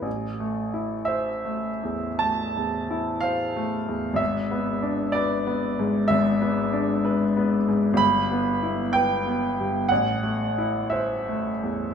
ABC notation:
X:1
M:12/8
L:1/8
Q:3/8=62
K:Am
V:1 name="Grand piano"
z3 e3 a3 f3 | e3 d3 e4- e z | [K:Em] b3 g3 f3 e3 |]
V:2 name="Grand piano"
A,,, A, E c A, E,, A, E,, E c A, E,, | ^G,,, B, D B B, ^G,, G,,, B, D B B, G,, | [K:Em] G,,, B, E B B, G,, A,,, A, E c A, E,, |]